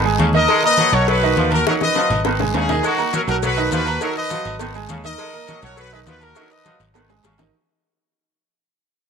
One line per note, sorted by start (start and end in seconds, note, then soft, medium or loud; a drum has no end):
0.00 0.16 G#1 loud
0.04 0.28 G#3 medium
0.04 0.29 G#4 medium
0.04 0.29 G#5 medium
0.04 high conga soft
0.18 0.45 D#2 loud
0.18 0.34 C#3 medium
0.18 cowbell medium
0.18 high conga medium
0.18 low agogo medium
0.18 short guiro medium
0.33 0.58 D#3 medium
0.33 0.58 D#4 medium
0.33 0.62 A#4 medium
0.33 0.58 D#5 medium
0.33 0.62 D#5 loud
0.33 high conga medium
0.33 short guiro medium
0.48 0.64 G#3 loud
0.48 cowbell loud
0.48 high conga soft
0.48 low agogo loud
0.48 long guiro medium
0.63 0.88 A#3 medium
0.63 0.88 A#4 medium
0.63 0.92 B4 medium
0.63 0.91 D#5 loud
0.63 0.88 A#5 medium
0.63 high conga soft
0.63 low agogo medium
0.77 0.94 F#3 medium
0.77 cowbell medium
0.77 high conga loud
0.77 low agogo medium
0.77 short guiro medium
0.92 1.33 B1 loud
0.92 1.17 F#3 medium
0.92 1.17 F#4 medium
0.92 1.08 A#4 medium
0.92 1.08 C#5 loud
0.92 1.17 F#5 medium
0.92 cowbell medium
0.92 low conga medium
0.92 low agogo loud
0.92 short guiro medium
1.07 1.23 F#3 medium
1.07 1.49 F#4 medium
1.07 1.49 B4 medium
1.07 cowbell loud
1.07 high conga soft
1.07 long guiro medium
1.21 1.47 D#3 loud
1.21 1.47 D#4 medium
1.21 1.47 D#5 loud
1.21 high conga soft
1.21 low agogo loud
1.37 1.63 D#2 loud
1.37 1.52 F3 medium
1.37 cowbell medium
1.37 high conga medium
1.37 short guiro medium
1.51 1.64 A#3 medium
1.51 1.66 F#4 medium
1.51 1.64 A#4 medium
1.51 1.66 A#4 medium
1.51 1.64 A#5 medium
1.51 cowbell medium
1.51 high conga medium
1.51 low agogo loud
1.51 short guiro medium
1.65 1.90 D#3 medium
1.65 1.82 F#3 medium
1.65 1.91 D#4 medium
1.65 1.74 F#4 medium
1.65 1.74 A#4 medium
1.65 1.91 D#5 medium
1.65 cowbell loud
1.65 high bongo loud
1.65 high conga medium
1.65 low agogo medium
1.65 long guiro medium
1.81 2.23 B4 medium
1.81 2.22 D#5 loud
1.81 high bongo loud
1.81 high conga medium
1.95 2.11 F3 medium
1.95 2.20 F#3 medium
1.95 2.20 F#4 medium
1.95 2.21 F#5 medium
1.95 cowbell medium
1.95 low bongo medium
1.95 low agogo loud
1.95 short guiro medium
2.10 2.51 G#1 medium
2.10 cowbell medium
2.10 low conga loud
2.10 low agogo medium
2.10 short guiro medium
2.25 2.41 D#3 medium
2.25 2.37 B3 medium
2.25 2.38 B4 medium
2.25 2.37 B5 medium
2.25 cowbell loud
2.25 low bongo loud
2.25 low agogo loud
2.25 long guiro medium
2.39 2.64 G#3 medium
2.39 2.64 G#4 medium
2.39 2.64 G#5 medium
2.39 low bongo loud
2.39 low conga medium
2.39 high timbale medium
2.54 2.80 D#2 loud
2.54 2.70 C#3 medium
2.54 2.82 D#4 medium
2.54 2.83 G#4 medium
2.54 cowbell medium
2.54 low bongo medium
2.54 high timbale loud
2.54 low agogo medium
2.54 short guiro medium
2.69 2.93 D#3 medium
2.69 2.93 D#4 medium
2.69 2.93 D#5 medium
2.69 low bongo medium
2.69 low conga medium
2.69 low timbale medium
2.69 short guiro medium
2.83 2.99 G#3 medium
2.83 3.12 D#4 medium
2.83 3.12 F#4 medium
2.83 cowbell loud
2.83 high conga soft
2.83 low agogo loud
2.83 long guiro medium
2.83 maracas medium
2.98 3.22 A#3 medium
2.98 3.22 A#4 medium
2.98 3.22 A#5 medium
2.98 high conga soft
2.98 low agogo medium
2.98 maracas soft
3.13 3.29 F#3 medium
3.13 3.21 F#4 medium
3.13 3.21 A#4 medium
3.13 cowbell medium
3.13 high conga loud
3.13 low agogo medium
3.13 short guiro medium
3.13 maracas medium
3.27 3.68 B1 medium
3.27 3.52 F#3 medium
3.27 3.52 F#4 medium
3.27 3.36 F#4 medium
3.27 3.35 A#4 medium
3.27 3.52 F#5 medium
3.27 cowbell medium
3.27 low conga medium
3.27 low agogo loud
3.27 short guiro medium
3.27 maracas soft
3.43 3.58 F#3 medium
3.43 3.71 F#4 medium
3.43 3.71 B4 medium
3.43 cowbell loud
3.43 high conga soft
3.43 low conga medium
3.43 long guiro medium
3.43 maracas medium
3.56 3.81 D#3 medium
3.56 3.81 D#4 loud
3.56 3.81 D#5 medium
3.56 high conga soft
3.56 low agogo medium
3.56 maracas soft
3.71 3.97 D#2 medium
3.71 3.87 F3 medium
3.71 4.00 F#4 medium
3.71 4.00 B4 loud
3.71 cowbell medium
3.71 high conga medium
3.71 low timbale medium
3.71 short guiro medium
3.71 maracas medium
3.86 3.99 A#3 medium
3.86 3.99 A#4 medium
3.86 3.99 A#5 medium
3.86 cowbell medium
3.86 low agogo loud
3.86 short guiro medium
3.86 maracas soft
4.01 4.25 D#3 medium
4.01 4.17 F#3 loud
4.01 4.26 D#4 medium
4.01 4.16 F#4 medium
4.01 4.16 A#4 loud
4.01 4.26 D#5 medium
4.01 cowbell loud
4.01 low agogo medium
4.01 long guiro medium
4.01 maracas medium
4.16 4.57 B4 medium
4.16 4.57 D#5 loud
4.16 high conga soft
4.16 maracas soft
4.30 4.46 F3 medium
4.30 4.55 F#3 medium
4.30 4.55 F#4 medium
4.30 4.55 F#5 medium
4.30 cowbell medium
4.30 high conga loud
4.30 low agogo loud
4.30 short guiro medium
4.30 maracas medium
4.45 4.86 G#1 loud
4.45 cowbell medium
4.45 high conga soft
4.45 low agogo medium
4.45 short guiro medium
4.45 maracas soft
4.59 4.75 D#3 medium
4.59 4.72 B3 medium
4.59 4.72 B4 medium
4.59 4.72 B5 medium
4.59 cowbell loud
4.59 high conga soft
4.59 low agogo loud
4.59 long guiro medium
4.59 maracas medium
4.74 4.99 G#3 medium
4.74 4.99 G#4 medium
4.74 4.99 G#5 medium
4.74 high conga soft
4.74 maracas soft
4.88 5.15 D#2 medium
4.88 5.04 C#3 medium
4.88 cowbell medium
4.88 high conga medium
4.88 low agogo medium
4.88 short guiro medium
4.88 maracas medium
5.04 5.28 D#3 medium
5.04 5.28 D#4 medium
5.04 5.59 A#4 medium
5.04 5.59 D#5 loud
5.04 5.29 D#5 medium
5.04 high conga medium
5.04 short guiro medium
5.04 maracas soft
5.18 5.34 G#3 loud
5.18 cowbell loud
5.18 high conga soft
5.18 low agogo loud
5.18 long guiro medium
5.18 maracas medium
5.33 5.58 A#3 medium
5.33 5.58 A#4 medium
5.33 5.58 A#5 medium
5.33 high conga soft
5.33 low agogo medium
5.33 maracas soft
5.47 5.63 F#3 medium
5.47 cowbell medium
5.47 high conga loud
5.47 low agogo medium
5.47 short guiro medium
5.47 maracas medium
5.62 6.04 B1 loud
5.62 5.87 F#3 medium
5.62 5.87 F#4 medium
5.62 5.78 A#4 medium
5.62 5.78 C#5 loud
5.62 5.87 F#5 medium
5.62 cowbell medium
5.62 low conga medium
5.62 low agogo loud
5.62 short guiro medium
5.62 maracas soft
5.76 5.92 F#3 medium
5.76 5.92 F#4 medium
5.76 5.91 B4 loud
5.76 cowbell loud
5.76 high conga soft
5.76 long guiro medium
5.76 maracas medium
5.91 6.16 D#3 medium
5.91 6.16 D#4 medium
5.91 5.99 G#4 medium
5.91 5.99 B4 medium
5.91 6.17 D#5 medium
5.91 high conga soft
5.91 low agogo medium
5.91 maracas soft
6.06 6.32 D#2 medium
6.06 6.21 F3 medium
6.06 6.21 F#4 medium
6.06 6.21 B4 medium
6.06 cowbell medium
6.06 high conga medium
6.06 low timbale medium
6.06 short guiro medium
6.06 maracas medium
6.21 6.34 A#3 medium
6.21 6.51 F#4 medium
6.21 6.51 A#4 medium
6.21 6.34 A#4 medium
6.21 6.34 A#5 medium
6.21 cowbell medium
6.21 low agogo loud
6.21 short guiro medium
6.21 maracas soft
6.35 6.60 D#3 medium
6.35 6.50 F#3 loud
6.35 6.60 D#4 medium
6.35 6.61 D#5 medium
6.35 cowbell loud
6.35 high conga soft
6.35 high timbale medium
6.35 low agogo medium
6.35 long guiro medium
6.35 maracas medium
6.51 6.81 B4 medium
6.51 6.80 D#5 loud
6.51 high conga soft
6.51 maracas soft
6.64 6.81 F3 medium
6.64 6.90 F#3 medium
6.64 6.90 F#4 medium
6.64 6.90 F#5 medium
6.64 cowbell medium
6.64 high conga loud
6.64 low agogo loud
6.64 short guiro medium
6.64 maracas medium
6.79 7.21 G#1 loud
6.79 cowbell medium
6.79 high conga soft
6.79 low agogo medium
6.79 short guiro medium
6.79 maracas soft
6.94 7.10 D#3 medium
6.94 7.07 B3 medium
6.94 7.07 B4 medium
6.94 7.07 B5 medium
6.94 cowbell loud
6.94 high conga soft
6.94 low timbale loud
6.94 low agogo loud
6.94 long guiro medium
6.94 maracas medium
7.09 7.33 G#3 medium
7.09 7.33 G#4 medium
7.09 7.34 G#5 medium
7.09 high bongo medium
7.09 high conga soft
7.09 low timbale medium
7.09 maracas soft
7.24 7.50 G#1 medium
7.24 7.40 C#3 medium
7.24 cowbell medium
7.24 high bongo medium
7.24 high conga medium
7.24 low timbale medium
7.24 low agogo medium
7.24 short guiro medium
7.24 maracas medium
7.38 7.51 D#3 medium
7.38 7.51 D#4 medium
7.38 7.51 D#5 medium
7.38 low bongo loud
7.38 high conga medium
7.38 low timbale loud
7.38 short guiro medium
7.38 maracas soft